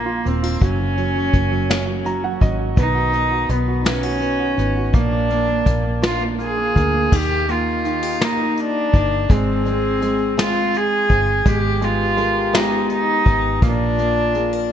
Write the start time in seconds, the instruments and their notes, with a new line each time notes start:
Already playing: fingered electric bass A#1, grand piano F3 A#3 F4 D#5, cello A#3, steel-string acoustic guitar A#3 D4 F4
0.06 grand piano F4
0.25 fingered electric bass D#1, grand piano A#3, steel-string acoustic guitar C4, cello C4, closed hi-hat
0.43 steel-string acoustic guitar D4, grand piano F4
0.61 fingered electric bass F#1, grand piano F#3, steel-string acoustic guitar A#3, cello C#4, kick, closed hi-hat
0.80 grand piano F#3
0.97 grand piano F#3, steel-string acoustic guitar C#4, closed hi-hat
1.16 grand piano F#3
1.33 fingered electric bass F#1, grand piano F#3, steel-string acoustic guitar A#3, kick, closed hi-hat
1.51 grand piano F#3
1.69 steel-string acoustic guitar C#4, grand piano C#4, snare, closed hi-hat
1.87 grand piano F#3
2.05 grand piano F#3 A#5, steel-string acoustic guitar F#4, closed hi-hat
2.24 grand piano F#3 F#5
2.40 fingered electric bass G#1, grand piano F#3 D#5, steel-string acoustic guitar C#4, kick, closed hi-hat
2.59 grand piano F#3
2.76 fingered electric bass B1, steel-string acoustic guitar D#3, grand piano B3, cello D#4, kick, closed hi-hat
2.95 grand piano F#4
3.12 grand piano B3, steel-string acoustic guitar D#4, closed hi-hat
3.31 grand piano F#4
3.48 fingered electric bass B1, steel-string acoustic guitar B3, grand piano B3, cello B3, closed hi-hat
3.68 grand piano F#4
3.85 grand piano B3, steel-string acoustic guitar C#4, cello C#4, snare, closed hi-hat
4.03 steel-string acoustic guitar D#4, grand piano F#4
4.20 grand piano B3, steel-string acoustic guitar F#4, closed hi-hat
4.40 grand piano F#4
4.57 fingered electric bass G#1, grand piano B3, steel-string acoustic guitar D#4, closed hi-hat
4.76 grand piano F#4
4.93 fingered electric bass A#1, steel-string acoustic guitar F3, grand piano A#3, cello D4, kick, closed hi-hat
5.13 grand piano A#3
5.29 grand piano A#3, steel-string acoustic guitar D4, closed hi-hat
5.48 grand piano A#3
5.65 fingered electric bass A#1, steel-string acoustic guitar A#3, grand piano A#3, kick, closed hi-hat
5.84 grand piano A#3
6.02 steel-string acoustic guitar D4, grand piano F4, snare, closed hi-hat
6.07 cello F4
6.21 grand piano A#3
6.39 grand piano A#3, steel-string acoustic guitar F4, cello G#4, closed hi-hat
6.57 grand piano A#3
6.75 fingered electric bass D2, grand piano A#3, steel-string acoustic guitar D4, kick, closed hi-hat
6.94 grand piano A#3
7.12 fingered electric bass D#2, grand piano D#3, steel-string acoustic guitar A#3, french horn section D#4, cello G4, kick, crash
7.48 steel-string acoustic guitar A#3, grand piano A#3, cello F4, closed hi-hat
7.85 grand piano D#3, steel-string acoustic guitar F4, closed hi-hat
8.03 steel-string acoustic guitar G4
8.21 steel-string acoustic guitar A#3, grand piano A#3, cello D#4, snare, closed hi-hat
8.57 cello D4, closed hi-hat
8.93 fingered electric bass G1, steel-string acoustic guitar A#3, kick, closed hi-hat
9.29 fingered electric bass G#1, grand piano G#3, steel-string acoustic guitar C4, cello C4, french horn section G#4, kick, closed hi-hat
9.65 grand piano G#3, steel-string acoustic guitar C4, closed hi-hat
10.01 grand piano G#3, steel-string acoustic guitar G#4, closed hi-hat
10.37 grand piano G#3, steel-string acoustic guitar C4, cello F4, snare, closed hi-hat
10.74 steel-string acoustic guitar D#4, cello G#4, closed hi-hat
11.10 fingered electric bass G1, steel-string acoustic guitar C4, kick, closed hi-hat
11.45 fingered electric bass G#1, grand piano G#3, steel-string acoustic guitar B3, french horn section G4, cello G4, kick, closed hi-hat
11.81 grand piano G#3, steel-string acoustic guitar B3, cello F4, closed hi-hat
12.17 grand piano G#3, steel-string acoustic guitar A#4, closed hi-hat
12.53 grand piano G#3, steel-string acoustic guitar B3, cello D#4, snare, closed hi-hat
12.90 steel-string acoustic guitar D#4, cello D#4, closed hi-hat
13.25 fingered electric bass G#1, steel-string acoustic guitar B3, kick, closed hi-hat
13.62 fingered electric bass A#1, steel-string acoustic guitar F3, grand piano A#3, cello D4, french horn section F4, kick, closed hi-hat
13.98 steel-string acoustic guitar A#3, grand piano A#3, closed hi-hat
14.35 grand piano A#3, steel-string acoustic guitar G#4, closed hi-hat
14.53 steel-string acoustic guitar A#4